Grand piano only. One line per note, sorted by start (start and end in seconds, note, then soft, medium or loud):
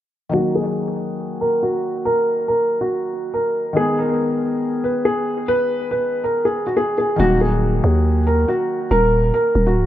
0.34 0.54 F#4 loud
0.55 1.37 G#4 medium
1.41 1.61 A#4 medium
1.63 2.03 F#4 medium
2.05 2.46 A#4 loud
2.48 2.79 A#4 medium
2.81 3.31 F#4 medium
3.34 3.74 A#4 medium
3.77 3.97 G#4 loud
3.98 4.80 A#4 medium
4.84 5.04 B4 medium
5.05 5.45 G#4 loud
5.48 5.89 B4 loud
5.91 6.22 B4 medium
6.24 6.44 A#4 medium
6.45 6.65 G#4 medium
6.67 6.76 F#4 medium
6.77 6.97 G#4 medium
6.98 7.18 G#4 medium
7.20 7.40 F#4 loud
7.41 8.23 G#4 medium
8.27 8.47 A#4 medium
8.48 8.89 F#4 medium
8.91 9.31 A#4 loud
9.34 9.65 A#4 medium
9.67 9.86 F#4 medium